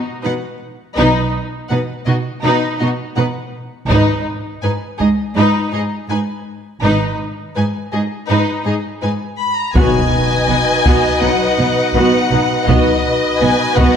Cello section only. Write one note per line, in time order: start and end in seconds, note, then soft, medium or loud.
0.25 0.33 B2 soft
0.98 1.06 B2 medium
1.71 1.79 B2 soft
2.07 2.15 B2 soft
2.44 2.52 B2 medium
2.81 2.89 B2 soft
3.17 3.25 B2 soft
3.90 3.98 G#2 medium
4.63 4.71 G#2 soft
5.00 5.08 G#2 soft
5.36 5.44 G#2 soft
5.73 5.81 G#2 soft
6.09 6.17 G#2 soft
6.83 6.91 G#2 soft
7.56 7.64 G#2 soft
7.93 8.01 G#2 soft
8.29 8.37 G#2 soft
8.66 8.74 G#2 soft
9.03 9.11 G#2 soft
9.76 9.84 B2 soft
10.49 10.57 B2 soft
10.85 10.93 B2 soft
11.21 11.29 B2 soft
11.59 11.67 B2 soft
11.95 12.03 B2 medium
12.31 12.39 B2 soft
12.68 12.76 B2 soft
13.41 13.49 B2 soft
13.77 13.85 B2 medium